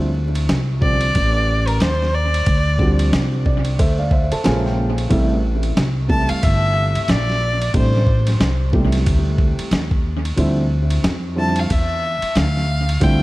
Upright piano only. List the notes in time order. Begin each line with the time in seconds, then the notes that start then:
0.81 D3 F3 G3 C4 D4
2.78 D3 F3 G3 C4 F#4
2.87 G4
3.46 D5
3.79 A4 C5 E5
3.99 D5 F5
4.12 C5 E5
4.32 A4 C5 A5
4.44 C#3 F3 G#3 A#3 F4 G#5
4.65 G5
5.09 C3 E3 G3 A3 E4
6.08 C3 E3 G3 A3 E4
7.74 C3 E3 G3 A3 D4
8.72 A#2 E3 G3 A3 G4
8.79 C3
10.36 D3 F3 G3 C4 E4
11.35 D3 F3 G3 C4 E4
13.00 D3 F3 G3 C4 E4